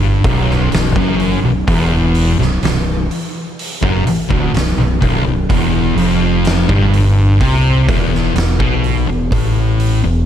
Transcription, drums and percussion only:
0, 0, Header, 1, 2, 480
1, 0, Start_track
1, 0, Key_signature, 2, "minor"
1, 0, Tempo, 956938
1, 841, Time_signature, 4, 2, 24, 8
1, 5145, End_track
2, 0, Start_track
2, 0, Title_t, "Drums"
2, 122, Note_on_c, 9, 36, 122
2, 123, Note_on_c, 9, 46, 65
2, 173, Note_off_c, 9, 36, 0
2, 173, Note_off_c, 9, 46, 0
2, 255, Note_on_c, 9, 38, 33
2, 305, Note_off_c, 9, 38, 0
2, 361, Note_on_c, 9, 46, 82
2, 374, Note_on_c, 9, 38, 113
2, 412, Note_off_c, 9, 46, 0
2, 424, Note_off_c, 9, 38, 0
2, 481, Note_on_c, 9, 36, 108
2, 531, Note_off_c, 9, 36, 0
2, 600, Note_on_c, 9, 46, 58
2, 650, Note_off_c, 9, 46, 0
2, 841, Note_on_c, 9, 36, 116
2, 841, Note_on_c, 9, 46, 87
2, 891, Note_off_c, 9, 36, 0
2, 892, Note_off_c, 9, 46, 0
2, 1078, Note_on_c, 9, 46, 60
2, 1128, Note_off_c, 9, 46, 0
2, 1212, Note_on_c, 9, 38, 31
2, 1262, Note_off_c, 9, 38, 0
2, 1319, Note_on_c, 9, 46, 76
2, 1331, Note_on_c, 9, 38, 105
2, 1369, Note_off_c, 9, 46, 0
2, 1381, Note_off_c, 9, 38, 0
2, 1560, Note_on_c, 9, 46, 55
2, 1611, Note_off_c, 9, 46, 0
2, 1802, Note_on_c, 9, 46, 71
2, 1852, Note_off_c, 9, 46, 0
2, 1919, Note_on_c, 9, 36, 110
2, 1970, Note_off_c, 9, 36, 0
2, 2041, Note_on_c, 9, 46, 68
2, 2091, Note_off_c, 9, 46, 0
2, 2159, Note_on_c, 9, 36, 108
2, 2210, Note_off_c, 9, 36, 0
2, 2279, Note_on_c, 9, 46, 77
2, 2292, Note_on_c, 9, 38, 116
2, 2330, Note_off_c, 9, 46, 0
2, 2342, Note_off_c, 9, 38, 0
2, 2519, Note_on_c, 9, 36, 96
2, 2520, Note_on_c, 9, 46, 52
2, 2569, Note_off_c, 9, 36, 0
2, 2570, Note_off_c, 9, 46, 0
2, 2758, Note_on_c, 9, 36, 109
2, 2761, Note_on_c, 9, 46, 83
2, 2808, Note_off_c, 9, 36, 0
2, 2811, Note_off_c, 9, 46, 0
2, 2998, Note_on_c, 9, 46, 54
2, 3048, Note_off_c, 9, 46, 0
2, 3234, Note_on_c, 9, 46, 67
2, 3247, Note_on_c, 9, 38, 110
2, 3285, Note_off_c, 9, 46, 0
2, 3297, Note_off_c, 9, 38, 0
2, 3357, Note_on_c, 9, 36, 118
2, 3407, Note_off_c, 9, 36, 0
2, 3479, Note_on_c, 9, 46, 57
2, 3529, Note_off_c, 9, 46, 0
2, 3715, Note_on_c, 9, 46, 75
2, 3716, Note_on_c, 9, 36, 109
2, 3765, Note_off_c, 9, 46, 0
2, 3766, Note_off_c, 9, 36, 0
2, 3956, Note_on_c, 9, 36, 118
2, 3958, Note_on_c, 9, 46, 64
2, 4006, Note_off_c, 9, 36, 0
2, 4008, Note_off_c, 9, 46, 0
2, 4088, Note_on_c, 9, 38, 37
2, 4138, Note_off_c, 9, 38, 0
2, 4192, Note_on_c, 9, 46, 78
2, 4205, Note_on_c, 9, 38, 103
2, 4243, Note_off_c, 9, 46, 0
2, 4255, Note_off_c, 9, 38, 0
2, 4314, Note_on_c, 9, 36, 109
2, 4364, Note_off_c, 9, 36, 0
2, 4434, Note_on_c, 9, 46, 47
2, 4484, Note_off_c, 9, 46, 0
2, 4675, Note_on_c, 9, 36, 121
2, 4675, Note_on_c, 9, 46, 83
2, 4725, Note_off_c, 9, 36, 0
2, 4725, Note_off_c, 9, 46, 0
2, 4915, Note_on_c, 9, 46, 64
2, 4965, Note_off_c, 9, 46, 0
2, 5145, End_track
0, 0, End_of_file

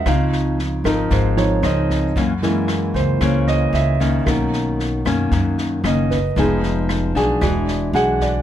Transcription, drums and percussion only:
0, 0, Header, 1, 2, 480
1, 0, Start_track
1, 0, Tempo, 525855
1, 54, Time_signature, 4, 2, 24, 8
1, 7687, End_track
2, 0, Start_track
2, 0, Title_t, "Drums"
2, 54, Note_on_c, 9, 37, 60
2, 54, Note_on_c, 9, 38, 25
2, 55, Note_on_c, 9, 36, 64
2, 146, Note_off_c, 9, 36, 0
2, 146, Note_off_c, 9, 37, 0
2, 146, Note_off_c, 9, 38, 0
2, 297, Note_on_c, 9, 38, 24
2, 388, Note_off_c, 9, 38, 0
2, 539, Note_on_c, 9, 38, 24
2, 630, Note_off_c, 9, 38, 0
2, 772, Note_on_c, 9, 36, 24
2, 777, Note_on_c, 9, 37, 56
2, 777, Note_on_c, 9, 38, 25
2, 863, Note_off_c, 9, 36, 0
2, 868, Note_off_c, 9, 37, 0
2, 868, Note_off_c, 9, 38, 0
2, 1009, Note_on_c, 9, 38, 26
2, 1010, Note_on_c, 9, 36, 63
2, 1100, Note_off_c, 9, 38, 0
2, 1102, Note_off_c, 9, 36, 0
2, 1252, Note_on_c, 9, 38, 26
2, 1343, Note_off_c, 9, 38, 0
2, 1491, Note_on_c, 9, 37, 61
2, 1491, Note_on_c, 9, 38, 24
2, 1582, Note_off_c, 9, 37, 0
2, 1582, Note_off_c, 9, 38, 0
2, 1731, Note_on_c, 9, 36, 26
2, 1736, Note_on_c, 9, 38, 25
2, 1822, Note_off_c, 9, 36, 0
2, 1827, Note_off_c, 9, 38, 0
2, 1971, Note_on_c, 9, 36, 61
2, 1973, Note_on_c, 9, 38, 26
2, 2062, Note_off_c, 9, 36, 0
2, 2064, Note_off_c, 9, 38, 0
2, 2214, Note_on_c, 9, 38, 25
2, 2305, Note_off_c, 9, 38, 0
2, 2448, Note_on_c, 9, 37, 57
2, 2448, Note_on_c, 9, 38, 24
2, 2539, Note_off_c, 9, 37, 0
2, 2539, Note_off_c, 9, 38, 0
2, 2689, Note_on_c, 9, 36, 24
2, 2692, Note_on_c, 9, 38, 23
2, 2780, Note_off_c, 9, 36, 0
2, 2783, Note_off_c, 9, 38, 0
2, 2929, Note_on_c, 9, 36, 60
2, 2929, Note_on_c, 9, 37, 59
2, 2929, Note_on_c, 9, 38, 26
2, 3020, Note_off_c, 9, 36, 0
2, 3021, Note_off_c, 9, 37, 0
2, 3021, Note_off_c, 9, 38, 0
2, 3170, Note_on_c, 9, 38, 26
2, 3262, Note_off_c, 9, 38, 0
2, 3413, Note_on_c, 9, 38, 25
2, 3504, Note_off_c, 9, 38, 0
2, 3651, Note_on_c, 9, 36, 25
2, 3654, Note_on_c, 9, 38, 26
2, 3743, Note_off_c, 9, 36, 0
2, 3745, Note_off_c, 9, 38, 0
2, 3893, Note_on_c, 9, 36, 63
2, 3896, Note_on_c, 9, 37, 66
2, 3896, Note_on_c, 9, 38, 26
2, 3985, Note_off_c, 9, 36, 0
2, 3987, Note_off_c, 9, 37, 0
2, 3987, Note_off_c, 9, 38, 0
2, 4135, Note_on_c, 9, 38, 25
2, 4226, Note_off_c, 9, 38, 0
2, 4377, Note_on_c, 9, 38, 25
2, 4468, Note_off_c, 9, 38, 0
2, 4613, Note_on_c, 9, 36, 24
2, 4618, Note_on_c, 9, 37, 61
2, 4618, Note_on_c, 9, 38, 25
2, 4705, Note_off_c, 9, 36, 0
2, 4709, Note_off_c, 9, 37, 0
2, 4709, Note_off_c, 9, 38, 0
2, 4851, Note_on_c, 9, 38, 25
2, 4853, Note_on_c, 9, 36, 61
2, 4943, Note_off_c, 9, 38, 0
2, 4944, Note_off_c, 9, 36, 0
2, 5093, Note_on_c, 9, 38, 26
2, 5184, Note_off_c, 9, 38, 0
2, 5334, Note_on_c, 9, 37, 60
2, 5334, Note_on_c, 9, 38, 25
2, 5425, Note_off_c, 9, 37, 0
2, 5425, Note_off_c, 9, 38, 0
2, 5572, Note_on_c, 9, 36, 25
2, 5575, Note_on_c, 9, 38, 25
2, 5663, Note_off_c, 9, 36, 0
2, 5666, Note_off_c, 9, 38, 0
2, 5808, Note_on_c, 9, 38, 26
2, 5811, Note_on_c, 9, 36, 62
2, 5899, Note_off_c, 9, 38, 0
2, 5902, Note_off_c, 9, 36, 0
2, 6052, Note_on_c, 9, 38, 24
2, 6144, Note_off_c, 9, 38, 0
2, 6291, Note_on_c, 9, 37, 58
2, 6291, Note_on_c, 9, 38, 25
2, 6382, Note_off_c, 9, 37, 0
2, 6382, Note_off_c, 9, 38, 0
2, 6530, Note_on_c, 9, 36, 23
2, 6533, Note_on_c, 9, 38, 24
2, 6622, Note_off_c, 9, 36, 0
2, 6624, Note_off_c, 9, 38, 0
2, 6769, Note_on_c, 9, 37, 60
2, 6769, Note_on_c, 9, 38, 25
2, 6770, Note_on_c, 9, 36, 61
2, 6861, Note_off_c, 9, 36, 0
2, 6861, Note_off_c, 9, 37, 0
2, 6861, Note_off_c, 9, 38, 0
2, 7009, Note_on_c, 9, 38, 27
2, 7100, Note_off_c, 9, 38, 0
2, 7254, Note_on_c, 9, 38, 25
2, 7345, Note_off_c, 9, 38, 0
2, 7490, Note_on_c, 9, 36, 25
2, 7491, Note_on_c, 9, 38, 26
2, 7582, Note_off_c, 9, 36, 0
2, 7582, Note_off_c, 9, 38, 0
2, 7687, End_track
0, 0, End_of_file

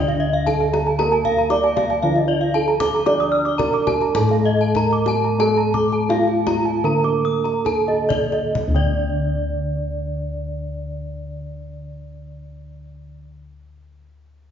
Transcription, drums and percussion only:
0, 0, Header, 1, 2, 480
1, 0, Start_track
1, 0, Tempo, 519481
1, 913, Time_signature, 4, 2, 24, 8
1, 3317, Tempo, 583658
1, 4277, Tempo, 643777
1, 4757, Tempo, 693642
1, 5237, Tempo, 749064
1, 5717, Tempo, 817439
1, 6197, Tempo, 895522
1, 6677, Tempo, 940439
1, 9717, End_track
2, 0, Start_track
2, 0, Title_t, "Kendang"
2, 78, Note_on_c, 9, 62, 21
2, 171, Note_off_c, 9, 62, 0
2, 436, Note_on_c, 9, 64, 48
2, 528, Note_off_c, 9, 64, 0
2, 560, Note_on_c, 9, 62, 21
2, 652, Note_off_c, 9, 62, 0
2, 680, Note_on_c, 9, 63, 49
2, 772, Note_off_c, 9, 63, 0
2, 796, Note_on_c, 9, 62, 23
2, 888, Note_off_c, 9, 62, 0
2, 915, Note_on_c, 9, 63, 52
2, 1007, Note_off_c, 9, 63, 0
2, 1037, Note_on_c, 9, 62, 24
2, 1130, Note_off_c, 9, 62, 0
2, 1154, Note_on_c, 9, 64, 46
2, 1246, Note_off_c, 9, 64, 0
2, 1269, Note_on_c, 9, 62, 21
2, 1362, Note_off_c, 9, 62, 0
2, 1386, Note_on_c, 9, 63, 50
2, 1478, Note_off_c, 9, 63, 0
2, 1510, Note_on_c, 9, 62, 24
2, 1602, Note_off_c, 9, 62, 0
2, 1633, Note_on_c, 9, 63, 60
2, 1633, Note_on_c, 9, 64, 45
2, 1726, Note_off_c, 9, 63, 0
2, 1726, Note_off_c, 9, 64, 0
2, 1754, Note_on_c, 9, 62, 23
2, 1847, Note_off_c, 9, 62, 0
2, 1991, Note_on_c, 9, 62, 24
2, 2084, Note_off_c, 9, 62, 0
2, 2475, Note_on_c, 9, 62, 23
2, 2568, Note_off_c, 9, 62, 0
2, 2589, Note_on_c, 9, 64, 78
2, 2681, Note_off_c, 9, 64, 0
2, 2833, Note_on_c, 9, 63, 50
2, 2925, Note_off_c, 9, 63, 0
2, 2956, Note_on_c, 9, 62, 26
2, 3049, Note_off_c, 9, 62, 0
2, 3198, Note_on_c, 9, 62, 27
2, 3291, Note_off_c, 9, 62, 0
2, 3319, Note_on_c, 9, 63, 61
2, 3319, Note_on_c, 9, 64, 62
2, 3401, Note_off_c, 9, 63, 0
2, 3401, Note_off_c, 9, 64, 0
2, 3433, Note_on_c, 9, 62, 26
2, 3516, Note_off_c, 9, 62, 0
2, 3548, Note_on_c, 9, 63, 52
2, 3548, Note_on_c, 9, 64, 58
2, 3631, Note_off_c, 9, 63, 0
2, 3631, Note_off_c, 9, 64, 0
2, 3665, Note_on_c, 9, 62, 25
2, 3748, Note_off_c, 9, 62, 0
2, 3777, Note_on_c, 9, 64, 77
2, 3859, Note_off_c, 9, 64, 0
2, 3893, Note_on_c, 9, 62, 25
2, 3976, Note_off_c, 9, 62, 0
2, 4270, Note_on_c, 9, 64, 56
2, 4345, Note_off_c, 9, 64, 0
2, 4390, Note_on_c, 9, 62, 22
2, 4464, Note_off_c, 9, 62, 0
2, 4503, Note_on_c, 9, 63, 57
2, 4577, Note_off_c, 9, 63, 0
2, 4638, Note_on_c, 9, 62, 20
2, 4712, Note_off_c, 9, 62, 0
2, 4755, Note_on_c, 9, 63, 49
2, 4824, Note_off_c, 9, 63, 0
2, 4871, Note_on_c, 9, 62, 24
2, 4940, Note_off_c, 9, 62, 0
2, 4991, Note_on_c, 9, 64, 55
2, 5060, Note_off_c, 9, 64, 0
2, 5116, Note_on_c, 9, 62, 19
2, 5185, Note_off_c, 9, 62, 0
2, 5241, Note_on_c, 9, 63, 61
2, 5305, Note_off_c, 9, 63, 0
2, 5356, Note_on_c, 9, 62, 22
2, 5420, Note_off_c, 9, 62, 0
2, 5475, Note_on_c, 9, 63, 65
2, 5475, Note_on_c, 9, 64, 48
2, 5539, Note_off_c, 9, 63, 0
2, 5539, Note_off_c, 9, 64, 0
2, 5598, Note_on_c, 9, 62, 22
2, 5662, Note_off_c, 9, 62, 0
2, 5832, Note_on_c, 9, 62, 23
2, 5891, Note_off_c, 9, 62, 0
2, 6075, Note_on_c, 9, 62, 23
2, 6134, Note_off_c, 9, 62, 0
2, 6197, Note_on_c, 9, 64, 58
2, 6250, Note_off_c, 9, 64, 0
2, 6316, Note_on_c, 9, 62, 24
2, 6369, Note_off_c, 9, 62, 0
2, 6434, Note_on_c, 9, 64, 74
2, 6488, Note_off_c, 9, 64, 0
2, 6551, Note_on_c, 9, 62, 26
2, 6605, Note_off_c, 9, 62, 0
2, 6675, Note_on_c, 9, 64, 75
2, 6726, Note_off_c, 9, 64, 0
2, 9717, End_track
0, 0, End_of_file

